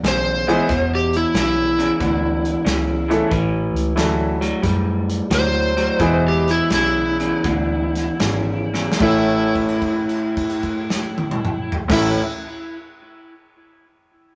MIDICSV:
0, 0, Header, 1, 6, 480
1, 0, Start_track
1, 0, Key_signature, 3, "major"
1, 0, Tempo, 655022
1, 512, Time_signature, 4, 2, 24, 8
1, 3393, Tempo, 692042
1, 4833, Tempo, 749064
1, 5793, Tempo, 798935
1, 6273, Tempo, 819672
1, 9404, End_track
2, 0, Start_track
2, 0, Title_t, "Electric slide guitar"
2, 0, Program_c, 0, 29
2, 57, Note_on_c, 0, 72, 103
2, 665, Note_off_c, 0, 72, 0
2, 697, Note_on_c, 0, 67, 86
2, 840, Note_off_c, 0, 67, 0
2, 855, Note_on_c, 0, 64, 77
2, 999, Note_off_c, 0, 64, 0
2, 1026, Note_on_c, 0, 64, 117
2, 2416, Note_off_c, 0, 64, 0
2, 3890, Note_on_c, 0, 72, 103
2, 4499, Note_off_c, 0, 72, 0
2, 4539, Note_on_c, 0, 67, 73
2, 4682, Note_off_c, 0, 67, 0
2, 4695, Note_on_c, 0, 64, 79
2, 4843, Note_off_c, 0, 64, 0
2, 4855, Note_on_c, 0, 64, 91
2, 6261, Note_off_c, 0, 64, 0
2, 6287, Note_on_c, 0, 64, 114
2, 7878, Note_off_c, 0, 64, 0
2, 7986, Note_on_c, 0, 64, 89
2, 8149, Note_off_c, 0, 64, 0
2, 9404, End_track
3, 0, Start_track
3, 0, Title_t, "Upright piano"
3, 0, Program_c, 1, 0
3, 349, Note_on_c, 1, 56, 65
3, 351, Note_on_c, 1, 52, 76
3, 353, Note_on_c, 1, 59, 74
3, 355, Note_on_c, 1, 64, 67
3, 356, Note_on_c, 1, 68, 82
3, 493, Note_off_c, 1, 56, 0
3, 494, Note_off_c, 1, 52, 0
3, 495, Note_off_c, 1, 59, 0
3, 496, Note_off_c, 1, 64, 0
3, 496, Note_off_c, 1, 68, 0
3, 2268, Note_on_c, 1, 57, 67
3, 2269, Note_on_c, 1, 52, 67
3, 2271, Note_on_c, 1, 64, 64
3, 2274, Note_on_c, 1, 61, 66
3, 2276, Note_on_c, 1, 69, 76
3, 2410, Note_off_c, 1, 57, 0
3, 2411, Note_off_c, 1, 52, 0
3, 2412, Note_off_c, 1, 64, 0
3, 2413, Note_off_c, 1, 61, 0
3, 2414, Note_off_c, 1, 69, 0
3, 2897, Note_on_c, 1, 57, 53
3, 2900, Note_on_c, 1, 52, 61
3, 2902, Note_on_c, 1, 61, 48
3, 2902, Note_on_c, 1, 64, 56
3, 2904, Note_on_c, 1, 69, 65
3, 3197, Note_off_c, 1, 57, 0
3, 3199, Note_off_c, 1, 52, 0
3, 3200, Note_off_c, 1, 61, 0
3, 3200, Note_off_c, 1, 64, 0
3, 3201, Note_off_c, 1, 69, 0
3, 4338, Note_on_c, 1, 52, 75
3, 4342, Note_on_c, 1, 56, 63
3, 4347, Note_on_c, 1, 59, 62
3, 4348, Note_on_c, 1, 64, 63
3, 4348, Note_on_c, 1, 68, 73
3, 5697, Note_off_c, 1, 52, 0
3, 5698, Note_off_c, 1, 56, 0
3, 5701, Note_off_c, 1, 59, 0
3, 5701, Note_off_c, 1, 64, 0
3, 5701, Note_off_c, 1, 68, 0
3, 6266, Note_on_c, 1, 45, 68
3, 6268, Note_on_c, 1, 57, 62
3, 6275, Note_on_c, 1, 61, 60
3, 6278, Note_on_c, 1, 64, 62
3, 6283, Note_on_c, 1, 76, 75
3, 7891, Note_off_c, 1, 45, 0
3, 7892, Note_off_c, 1, 57, 0
3, 7895, Note_off_c, 1, 61, 0
3, 7897, Note_off_c, 1, 64, 0
3, 7899, Note_off_c, 1, 76, 0
3, 7959, Note_on_c, 1, 45, 70
3, 7964, Note_on_c, 1, 61, 61
3, 7965, Note_on_c, 1, 57, 61
3, 7972, Note_on_c, 1, 64, 65
3, 7977, Note_on_c, 1, 76, 77
3, 8140, Note_off_c, 1, 45, 0
3, 8143, Note_off_c, 1, 57, 0
3, 8143, Note_off_c, 1, 61, 0
3, 8146, Note_off_c, 1, 64, 0
3, 8149, Note_off_c, 1, 76, 0
3, 9404, End_track
4, 0, Start_track
4, 0, Title_t, "Clean electric guitar"
4, 0, Program_c, 2, 27
4, 26, Note_on_c, 2, 40, 81
4, 31, Note_on_c, 2, 49, 92
4, 321, Note_off_c, 2, 40, 0
4, 323, Note_off_c, 2, 49, 0
4, 346, Note_on_c, 2, 40, 86
4, 351, Note_on_c, 2, 49, 90
4, 491, Note_off_c, 2, 40, 0
4, 494, Note_off_c, 2, 49, 0
4, 502, Note_on_c, 2, 40, 70
4, 505, Note_on_c, 2, 47, 80
4, 955, Note_off_c, 2, 40, 0
4, 956, Note_off_c, 2, 47, 0
4, 986, Note_on_c, 2, 40, 72
4, 987, Note_on_c, 2, 49, 78
4, 1279, Note_off_c, 2, 40, 0
4, 1280, Note_off_c, 2, 49, 0
4, 1310, Note_on_c, 2, 40, 78
4, 1312, Note_on_c, 2, 49, 87
4, 1452, Note_off_c, 2, 40, 0
4, 1453, Note_off_c, 2, 49, 0
4, 1465, Note_on_c, 2, 40, 86
4, 1468, Note_on_c, 2, 50, 93
4, 1916, Note_off_c, 2, 40, 0
4, 1917, Note_off_c, 2, 50, 0
4, 1940, Note_on_c, 2, 40, 77
4, 1943, Note_on_c, 2, 49, 93
4, 2235, Note_off_c, 2, 40, 0
4, 2237, Note_off_c, 2, 49, 0
4, 2260, Note_on_c, 2, 40, 79
4, 2264, Note_on_c, 2, 49, 78
4, 2406, Note_off_c, 2, 40, 0
4, 2408, Note_off_c, 2, 49, 0
4, 2423, Note_on_c, 2, 45, 81
4, 2425, Note_on_c, 2, 52, 95
4, 2875, Note_off_c, 2, 45, 0
4, 2876, Note_off_c, 2, 52, 0
4, 2902, Note_on_c, 2, 45, 75
4, 2907, Note_on_c, 2, 54, 82
4, 3199, Note_off_c, 2, 45, 0
4, 3202, Note_off_c, 2, 54, 0
4, 3233, Note_on_c, 2, 54, 93
4, 3235, Note_on_c, 2, 45, 84
4, 3378, Note_off_c, 2, 45, 0
4, 3378, Note_off_c, 2, 54, 0
4, 3388, Note_on_c, 2, 45, 82
4, 3392, Note_on_c, 2, 55, 87
4, 3829, Note_off_c, 2, 45, 0
4, 3830, Note_off_c, 2, 55, 0
4, 3861, Note_on_c, 2, 45, 88
4, 3866, Note_on_c, 2, 54, 88
4, 4151, Note_off_c, 2, 45, 0
4, 4154, Note_off_c, 2, 54, 0
4, 4183, Note_on_c, 2, 45, 80
4, 4186, Note_on_c, 2, 54, 87
4, 4325, Note_off_c, 2, 45, 0
4, 4327, Note_off_c, 2, 54, 0
4, 4336, Note_on_c, 2, 40, 84
4, 4342, Note_on_c, 2, 47, 95
4, 4799, Note_off_c, 2, 40, 0
4, 4802, Note_off_c, 2, 47, 0
4, 4836, Note_on_c, 2, 40, 72
4, 4840, Note_on_c, 2, 49, 87
4, 5119, Note_off_c, 2, 40, 0
4, 5121, Note_off_c, 2, 49, 0
4, 5147, Note_on_c, 2, 40, 78
4, 5151, Note_on_c, 2, 49, 82
4, 5288, Note_off_c, 2, 40, 0
4, 5291, Note_off_c, 2, 49, 0
4, 5306, Note_on_c, 2, 40, 80
4, 5306, Note_on_c, 2, 50, 90
4, 5763, Note_off_c, 2, 40, 0
4, 5763, Note_off_c, 2, 50, 0
4, 5788, Note_on_c, 2, 40, 79
4, 5792, Note_on_c, 2, 49, 102
4, 6081, Note_off_c, 2, 40, 0
4, 6083, Note_off_c, 2, 49, 0
4, 6113, Note_on_c, 2, 40, 81
4, 6119, Note_on_c, 2, 49, 80
4, 6257, Note_off_c, 2, 40, 0
4, 6261, Note_off_c, 2, 49, 0
4, 6264, Note_on_c, 2, 45, 91
4, 6273, Note_on_c, 2, 57, 96
4, 6281, Note_on_c, 2, 61, 81
4, 6286, Note_on_c, 2, 64, 92
4, 7958, Note_off_c, 2, 45, 0
4, 7961, Note_on_c, 2, 45, 91
4, 7967, Note_off_c, 2, 57, 0
4, 7970, Note_on_c, 2, 57, 84
4, 7975, Note_off_c, 2, 61, 0
4, 7977, Note_on_c, 2, 61, 90
4, 7982, Note_off_c, 2, 64, 0
4, 7984, Note_on_c, 2, 64, 97
4, 8141, Note_off_c, 2, 45, 0
4, 8145, Note_off_c, 2, 57, 0
4, 8149, Note_off_c, 2, 61, 0
4, 8153, Note_off_c, 2, 64, 0
4, 9404, End_track
5, 0, Start_track
5, 0, Title_t, "Fingered electric bass"
5, 0, Program_c, 3, 33
5, 23, Note_on_c, 3, 35, 89
5, 428, Note_off_c, 3, 35, 0
5, 504, Note_on_c, 3, 28, 98
5, 908, Note_off_c, 3, 28, 0
5, 983, Note_on_c, 3, 35, 90
5, 1387, Note_off_c, 3, 35, 0
5, 1468, Note_on_c, 3, 38, 93
5, 1869, Note_off_c, 3, 38, 0
5, 1949, Note_on_c, 3, 37, 81
5, 2349, Note_off_c, 3, 37, 0
5, 2429, Note_on_c, 3, 33, 101
5, 2700, Note_off_c, 3, 33, 0
5, 2742, Note_on_c, 3, 37, 94
5, 2877, Note_off_c, 3, 37, 0
5, 2901, Note_on_c, 3, 38, 80
5, 3311, Note_off_c, 3, 38, 0
5, 3396, Note_on_c, 3, 42, 96
5, 3787, Note_off_c, 3, 42, 0
5, 3860, Note_on_c, 3, 38, 85
5, 4262, Note_off_c, 3, 38, 0
5, 4342, Note_on_c, 3, 28, 95
5, 4754, Note_off_c, 3, 28, 0
5, 4834, Note_on_c, 3, 35, 78
5, 5228, Note_off_c, 3, 35, 0
5, 5304, Note_on_c, 3, 38, 98
5, 5714, Note_off_c, 3, 38, 0
5, 5795, Note_on_c, 3, 32, 76
5, 6197, Note_off_c, 3, 32, 0
5, 6273, Note_on_c, 3, 33, 91
5, 7871, Note_off_c, 3, 33, 0
5, 7966, Note_on_c, 3, 33, 85
5, 8131, Note_off_c, 3, 33, 0
5, 9404, End_track
6, 0, Start_track
6, 0, Title_t, "Drums"
6, 31, Note_on_c, 9, 42, 81
6, 34, Note_on_c, 9, 38, 106
6, 104, Note_off_c, 9, 42, 0
6, 107, Note_off_c, 9, 38, 0
6, 358, Note_on_c, 9, 42, 54
6, 432, Note_off_c, 9, 42, 0
6, 505, Note_on_c, 9, 42, 77
6, 508, Note_on_c, 9, 36, 90
6, 508, Note_on_c, 9, 38, 29
6, 578, Note_off_c, 9, 42, 0
6, 581, Note_off_c, 9, 36, 0
6, 581, Note_off_c, 9, 38, 0
6, 830, Note_on_c, 9, 42, 54
6, 904, Note_off_c, 9, 42, 0
6, 988, Note_on_c, 9, 42, 74
6, 990, Note_on_c, 9, 38, 102
6, 1061, Note_off_c, 9, 42, 0
6, 1064, Note_off_c, 9, 38, 0
6, 1316, Note_on_c, 9, 42, 62
6, 1389, Note_off_c, 9, 42, 0
6, 1469, Note_on_c, 9, 36, 93
6, 1470, Note_on_c, 9, 42, 70
6, 1543, Note_off_c, 9, 36, 0
6, 1543, Note_off_c, 9, 42, 0
6, 1796, Note_on_c, 9, 42, 57
6, 1869, Note_off_c, 9, 42, 0
6, 1952, Note_on_c, 9, 42, 79
6, 1955, Note_on_c, 9, 38, 103
6, 2025, Note_off_c, 9, 42, 0
6, 2028, Note_off_c, 9, 38, 0
6, 2279, Note_on_c, 9, 42, 59
6, 2352, Note_off_c, 9, 42, 0
6, 2429, Note_on_c, 9, 36, 102
6, 2433, Note_on_c, 9, 42, 78
6, 2503, Note_off_c, 9, 36, 0
6, 2506, Note_off_c, 9, 42, 0
6, 2758, Note_on_c, 9, 42, 59
6, 2832, Note_off_c, 9, 42, 0
6, 2911, Note_on_c, 9, 42, 85
6, 2914, Note_on_c, 9, 38, 98
6, 2985, Note_off_c, 9, 42, 0
6, 2988, Note_off_c, 9, 38, 0
6, 3241, Note_on_c, 9, 42, 67
6, 3314, Note_off_c, 9, 42, 0
6, 3396, Note_on_c, 9, 36, 91
6, 3399, Note_on_c, 9, 42, 80
6, 3466, Note_off_c, 9, 36, 0
6, 3468, Note_off_c, 9, 42, 0
6, 3716, Note_on_c, 9, 42, 67
6, 3786, Note_off_c, 9, 42, 0
6, 3863, Note_on_c, 9, 42, 84
6, 3866, Note_on_c, 9, 38, 111
6, 3932, Note_off_c, 9, 42, 0
6, 3935, Note_off_c, 9, 38, 0
6, 4187, Note_on_c, 9, 42, 54
6, 4256, Note_off_c, 9, 42, 0
6, 4340, Note_on_c, 9, 42, 75
6, 4342, Note_on_c, 9, 36, 94
6, 4409, Note_off_c, 9, 42, 0
6, 4412, Note_off_c, 9, 36, 0
6, 4675, Note_on_c, 9, 42, 50
6, 4677, Note_on_c, 9, 38, 31
6, 4744, Note_off_c, 9, 42, 0
6, 4747, Note_off_c, 9, 38, 0
6, 4831, Note_on_c, 9, 42, 77
6, 4834, Note_on_c, 9, 38, 92
6, 4895, Note_off_c, 9, 42, 0
6, 4898, Note_off_c, 9, 38, 0
6, 5149, Note_on_c, 9, 42, 55
6, 5213, Note_off_c, 9, 42, 0
6, 5304, Note_on_c, 9, 42, 77
6, 5305, Note_on_c, 9, 36, 94
6, 5368, Note_off_c, 9, 42, 0
6, 5370, Note_off_c, 9, 36, 0
6, 5633, Note_on_c, 9, 42, 63
6, 5635, Note_on_c, 9, 38, 32
6, 5697, Note_off_c, 9, 42, 0
6, 5700, Note_off_c, 9, 38, 0
6, 5789, Note_on_c, 9, 42, 86
6, 5792, Note_on_c, 9, 38, 110
6, 5849, Note_off_c, 9, 42, 0
6, 5852, Note_off_c, 9, 38, 0
6, 6116, Note_on_c, 9, 38, 61
6, 6176, Note_off_c, 9, 38, 0
6, 6221, Note_on_c, 9, 38, 89
6, 6270, Note_on_c, 9, 49, 86
6, 6273, Note_on_c, 9, 36, 100
6, 6281, Note_off_c, 9, 38, 0
6, 6329, Note_off_c, 9, 49, 0
6, 6332, Note_off_c, 9, 36, 0
6, 6595, Note_on_c, 9, 49, 37
6, 6596, Note_on_c, 9, 36, 57
6, 6653, Note_off_c, 9, 49, 0
6, 6654, Note_off_c, 9, 36, 0
6, 6673, Note_on_c, 9, 57, 40
6, 6731, Note_off_c, 9, 57, 0
6, 6751, Note_on_c, 9, 36, 60
6, 6751, Note_on_c, 9, 49, 44
6, 6809, Note_off_c, 9, 36, 0
6, 6809, Note_off_c, 9, 49, 0
6, 6910, Note_on_c, 9, 57, 48
6, 6968, Note_off_c, 9, 57, 0
6, 7072, Note_on_c, 9, 49, 51
6, 7073, Note_on_c, 9, 36, 65
6, 7131, Note_off_c, 9, 49, 0
6, 7132, Note_off_c, 9, 36, 0
6, 7147, Note_on_c, 9, 57, 49
6, 7205, Note_off_c, 9, 57, 0
6, 7224, Note_on_c, 9, 49, 51
6, 7228, Note_on_c, 9, 36, 52
6, 7283, Note_off_c, 9, 49, 0
6, 7286, Note_off_c, 9, 36, 0
6, 7386, Note_on_c, 9, 38, 88
6, 7444, Note_off_c, 9, 38, 0
6, 7546, Note_on_c, 9, 48, 98
6, 7605, Note_off_c, 9, 48, 0
6, 7626, Note_on_c, 9, 47, 96
6, 7684, Note_off_c, 9, 47, 0
6, 7703, Note_on_c, 9, 45, 102
6, 7762, Note_off_c, 9, 45, 0
6, 7865, Note_on_c, 9, 43, 108
6, 7923, Note_off_c, 9, 43, 0
6, 7967, Note_on_c, 9, 49, 117
6, 7968, Note_on_c, 9, 36, 114
6, 7969, Note_on_c, 9, 38, 104
6, 8026, Note_off_c, 9, 36, 0
6, 8026, Note_off_c, 9, 49, 0
6, 8028, Note_off_c, 9, 38, 0
6, 9404, End_track
0, 0, End_of_file